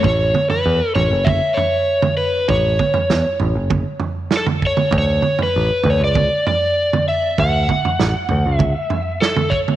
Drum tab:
SD |----------------|----o-------o---|----------------|----o-------o---|
T2 |--o-----o----o--|--o-----o----o-o|--o-----o----o--|--o-----o----o-o|
FT |o--o--o---o--o--|o--o--o---o--o--|o--o--o---o--o--|o--o--o---o--o--|
BD |o-------o-------|o-o-----o-----o-|o-------o-------|o-o-----o-----o-|